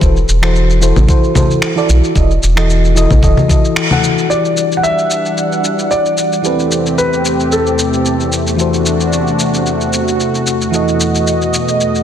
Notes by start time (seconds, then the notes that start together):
0.00 E1 E3 E4 F#4 A4 C5, kick, shaker
0.16 shaker
0.28 E1, shaker
0.42 E3 E4 F#4 A4 C5, finger snap, shaker
0.55 shaker
0.70 shaker
0.81 E3 E4 F#4 A4 C5, shaker
0.96 A1, low conga, shaker
1.07 E3 E4 F#4 A4 C5, kick, shaker
1.24 shaker
1.34 E3 E4 F#4 A4 C5, kick, low conga, shaker
1.51 shaker
1.62 finger snap, shaker
1.75 E3 E4 F#4 A4 D5, shaker
1.89 B1, shaker
2.04 shaker
2.14 E1 E3 E4 F#4 A4 D#5, kick, shaker
2.31 shaker
2.43 E1, shaker
2.56 E3 E4 F#4 A4 D#5, finger snap, shaker
2.70 shaker
2.84 shaker
2.95 E3 E4 F#4 A4 D#5, shaker
3.11 A1, kick, low conga, shaker
3.21 E1 E3 E4 F#4 A4 D#5, kick, shaker
3.37 low conga, shaker
3.48 E3 E4 F#4 A4 D#5, kick, shaker
3.65 shaker
3.76 finger snap, shaker
3.90 E3 E4 F#4 A4 F#5, low conga, shaker
4.04 shaker
4.18 shaker
4.28 E3 G3 D4 E4 F#4 G4 D5 F#5, shaker
4.33 D5
4.45 shaker
4.57 shaker
4.72 shaker
4.77 F#5
4.83 E5, shaker
4.99 shaker
5.11 shaker
5.25 shaker
5.38 shaker
5.52 shaker
5.64 shaker
5.79 shaker
5.91 D5, shaker
6.06 shaker
6.18 shaker
6.33 shaker
6.42 E2 C3 E3 A3 C4 E4 G4 A4 B4, shaker
6.47 C4
6.59 shaker
6.72 shaker
6.86 shaker
6.98 B4, shaker
7.13 shaker
7.25 shaker
7.40 shaker
7.52 A4, shaker
7.67 shaker
7.79 shaker
7.93 shaker
8.06 shaker
8.20 shaker
8.32 shaker
8.47 shaker
8.56 C3 E3 D4 E4 F#4 A4, shaker
8.61 C5
8.74 shaker
8.86 shaker
9.00 shaker
9.13 shaker
9.27 shaker
9.39 shaker
9.54 shaker
9.66 shaker
9.81 shaker
9.93 shaker
10.08 shaker
10.20 shaker
10.35 shaker
10.47 shaker
10.61 shaker
10.71 E2 B2 E3 E4 F#4 A4 D#5, shaker
10.75 D#5
10.88 shaker
11.00 shaker
11.15 shaker
11.27 shaker
11.42 shaker
11.54 shaker
11.68 shaker
11.81 shaker
11.95 shaker